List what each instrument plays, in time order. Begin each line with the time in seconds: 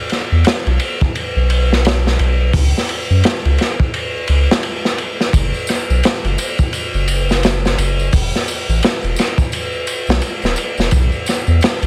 0.09 snare, ride
0.32 sub bass E2
0.44 snare, ride
0.66 sub bass B1, ride
0.79 ride
1.01 kick
1.15 ride
1.36 sub bass B1
1.50 ride
1.73 snare
1.85 snare, ride
2.07 snare
2.19 sub bass B1, ride
2.53 sub bass C#2, kick, open hi-hat
2.78 snare
2.89 ride
3.10 sub bass F#2
3.24 snare, ride
3.45 sub bass C#2, ride
3.58 snare, ride
3.80 kick
3.94 ride
4.27 sub bass C#2, ride
4.51 snare
4.63 ride
4.85 snare
4.98 ride
5.21 snare
5.33 sub bass F#1, kick, ride, tambourine
5.54 tambourine
5.67 snare, ride, tambourine
5.90 sub bass B1, tambourine
6.03 snare, ride, tambourine
6.24 sub bass F#1, ride, tambourine
6.38 ride, tambourine
6.58 kick, tambourine
6.73 ride, tambourine
6.94 sub bass F#1, tambourine
7.08 ride, tambourine
7.29 snare, tambourine
7.43 snare, ride, tambourine
7.65 snare, tambourine
7.78 sub bass F#1, ride, tambourine
7.99 tambourine
8.13 sub bass E1, kick, open hi-hat, tambourine
8.33 snare, tambourine
8.48 ride, tambourine
8.69 sub bass A1, tambourine
8.83 snare, ride, tambourine
9.03 sub bass E1, ride, tambourine
9.16 snare, ride, tambourine
9.38 kick, tambourine
9.52 ride, tambourine
9.72 tambourine
9.87 ride, tambourine
10.07 sub bass B1, snare, tambourine
10.21 ride, tambourine
10.42 sub bass D1, snare, tambourine
10.56 ride, tambourine
10.78 sub bass E1, snare, tambourine
10.91 sub bass B1, kick, ride, tambourine
11.12 tambourine
11.26 snare, ride, tambourine
11.47 sub bass E2, tambourine
11.61 snare, ride, tambourine
11.82 sub bass B1, ride, tambourine